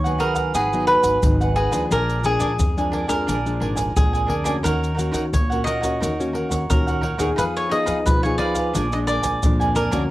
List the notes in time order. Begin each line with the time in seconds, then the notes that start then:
Already playing: D#2 D#3 C#5
0.04 F#3 B3 D#4 G#4 B4 F#5, pandeiro, maracas
0.18 F#4 G#4 A#4 B4 F#5, pandeiro
0.35 G#4 B4 F#5, pandeiro, maracas, surdo
0.54 G#1 G#2 F#4 G#4 B4 F#5, pandeiro, maracas, surdo
0.73 F#3 B3 D#4, pandeiro, maracas
0.87 F#4 G#4 B4 F#5, pandeiro
1.03 G#1 G#4 B4 F#5, pandeiro, maracas, surdo
1.23 G#1 D#3 F#3 B3 D#4, pandeiro, maracas, surdo
1.41 G#4 B4 F#5, pandeiro, maracas
1.55 F#4 G#4 B4 F#5, pandeiro
1.71 D#2 F3 G#3 D4 F#4 G#4 B4 F#5, pandeiro, maracas, surdo
1.91 A#1 A#2 D4 A#4 D5 G#5, pandeiro, maracas, surdo
2.09 pandeiro, maracas
2.24 F3 G#3 D4 G#4 A#4 D5 G#5, pandeiro, maracas
2.39 A#2 D4 A#4 D5 G#5, pandeiro, maracas, surdo
2.59 F2, pandeiro, maracas, surdo
2.77 F3 G#3 D4 A#4 D5 G#5, pandeiro, maracas
2.92 D4 A#4 D5 G#5, pandeiro
3.07 F3 G#3 D4 A#4 D5 G#5, pandeiro, maracas, surdo
3.27 A#1 A#2 D4 A#4 D5 G#5, pandeiro, maracas, surdo
3.45 F3 G#3 D4, pandeiro, maracas
3.60 G#1 D4 A#4 D5 G#5, pandeiro
3.75 A#4 D5 G#5, pandeiro, maracas, surdo
3.96 A#1 F2 F3 G#3 D4 G#4, pandeiro, maracas, surdo
4.13 A#4 D5 G#5, pandeiro, maracas
4.27 D2 D4 A#4 D5 G#5, pandeiro
4.44 A#3 C#4 D4 F#4 A#4 D5 G#5, pandeiro, maracas, surdo
4.63 D#2 D#3 D#4 A#4 C#5 F#5, pandeiro, maracas, surdo
4.84 pandeiro, maracas
4.95 A#3 C#4 D#4 A#4 C#5 F#5
4.99 F#4, pandeiro, maracas
5.12 D#3 D#4 A#4 C#5 F#5, pandeiro, maracas, surdo
5.33 A#1 A#2 C#5, pandeiro, maracas, surdo
5.50 A#3 C#4 A#4 C#5 F#5, pandeiro, maracas
5.54 F#4
5.64 D#4 A#4 C#5 D#5 F#5, pandeiro, maracas
5.80 A#3 C#4 F#4 A#4 C#5 F#5, pandeiro, maracas, surdo
6.00 D#2 D#3 D#4 A#4 C#5 F#5, pandeiro, maracas, surdo
6.20 A#3 C#4 F#4, pandeiro, maracas
6.33 D#4 A#4 C#5 F#5, pandeiro
6.49 D#2 A#4 C#5 F#5, pandeiro, maracas, surdo
6.70 D#2 A#2 A#3 C#4 F#4 A#4, pandeiro, maracas, surdo
6.87 A#4 C#5 F#5, pandeiro, maracas
7.01 D#4 A#4 C#5 F#5, pandeiro
7.18 D#2 B3 D#4 G#4 A#4 C#5 F#5, pandeiro, maracas, surdo
7.36 F2 F3 D#4 G#4 B4 F5, pandeiro, maracas, surdo
7.57 C#5, pandeiro, maracas
7.69 B3 D#4 G#4 B4 D#5 F5, pandeiro
7.86 F3 D#4 G#4 B4 F5, pandeiro, maracas, surdo
8.06 B1 F3 B4, pandeiro, maracas, surdo
8.23 B3 D#4 G#4 B4 C#5 F5, pandeiro, maracas
8.38 D#4 G#4 B4 D5 F5, pandeiro
8.54 G#4 B4 F5, pandeiro, maracas, surdo
8.73 A#1 A#2 F3 G#3 D4 A#4 D5 G#5, pandeiro, maracas, surdo
8.92 F3 G#3 D4 D#5, pandeiro, maracas
9.07 D4 A#4 D5 G#5, pandeiro, maracas
9.22 A#1 A#4 D5 G#5, pandeiro, maracas, surdo
9.43 A#1 F2 F3 G#3 D4, pandeiro, maracas, surdo
9.60 A#4 D5 G#5, pandeiro, maracas
9.75 D4 A#4 D5 G#5, pandeiro, maracas
9.91 D2 A#3 C#4 D4 F#4 A#4 D5 G#5, pandeiro, maracas, surdo